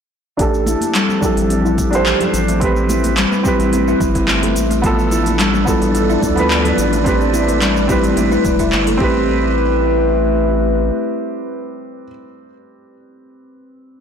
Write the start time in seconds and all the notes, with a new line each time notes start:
0.37 A1 F3 A3 C4 D4 G4 A4, kick, open hi-hat, shaker
0.54 shaker
0.66 E4, open hi-hat, muted conga, shaker
0.81 open hi-hat, high conga, shaker
0.95 G3, clap, open hi-hat, shaker
1.09 muted conga, shaker
1.21 D4 E4 G4 A4, kick, low conga, shaker
1.37 A1, open hi-hat, shaker
1.50 C4, open hi-hat, shaker
1.65 E4, shaker
1.78 kick, open hi-hat, muted conga, shaker
1.91 C4 D4 G4, open hi-hat, high conga, shaker
1.95 C5
2.06 clap, shaker
2.21 A4, open hi-hat, low conga, shaker
2.34 A1, open hi-hat, shaker
2.48 A3, open hi-hat, muted conga, shaker
2.60 A3 C4 E4 G4 B4, kick, open hi-hat, shaker
2.64 B4
2.76 shaker
2.89 E4, open hi-hat, muted conga, shaker
3.04 open hi-hat, high conga, shaker
3.17 G3, clap, open hi-hat, shaker
3.32 muted conga, shaker
3.43 C4 E4 G4, kick, low conga, shaker
3.48 B4
3.59 A1, open hi-hat, shaker
3.72 C4, open hi-hat, high conga, shaker
3.88 E4, shaker
4.00 G1, kick, open hi-hat, low conga, shaker
4.15 C4, kick, open hi-hat, shaker
4.28 clap, muted conga, shaker
4.43 A4, open hi-hat, high conga, shaker
4.56 A1, open hi-hat, high conga, shaker
4.70 A3, open hi-hat, muted conga, shaker
4.82 F3 G3 A3 B3 D4 A4 D5, kick, open hi-hat, shaker
4.86 A4
4.99 shaker
5.11 E4, open hi-hat, muted conga, shaker
5.26 open hi-hat, high conga, shaker
5.39 G3, clap, open hi-hat, shaker
5.54 muted conga, shaker
5.65 F3 B3 E4, kick, low conga, shaker
5.69 A4
5.82 A1, open hi-hat, shaker
5.95 B3, open hi-hat, shaker
6.10 E4, shaker
6.22 D2, kick, open hi-hat, muted conga, shaker
6.35 F3 B3 B4, open hi-hat, high conga, shaker
6.51 clap, shaker
6.65 A4, open hi-hat, low conga, shaker
6.78 A1, open hi-hat, shaker
6.93 A3, open hi-hat, muted conga, shaker
7.04 A3 C4 E4 G4 B4, kick, open hi-hat, shaker
7.08 B4
7.21 shaker
7.34 E4, open hi-hat, muted conga, shaker
7.48 open hi-hat, high conga, shaker
7.61 G3, clap, open hi-hat, shaker
7.76 muted conga, shaker
7.87 C4 E4 G4 B4, kick, open hi-hat, low conga, shaker
8.04 A1, open hi-hat, shaker
8.16 A1 C4, open hi-hat, high conga, shaker
8.32 E4, shaker
8.45 E1, kick, open hi-hat, high conga, low conga, shaker
8.59 E4, kick, open hi-hat, shaker
8.72 G1, clap, muted conga, shaker
8.87 A4, open hi-hat, high conga, shaker
8.97 A1 A3 C4 E4 G4 B4, kick
9.03 B4
9.15 muted conga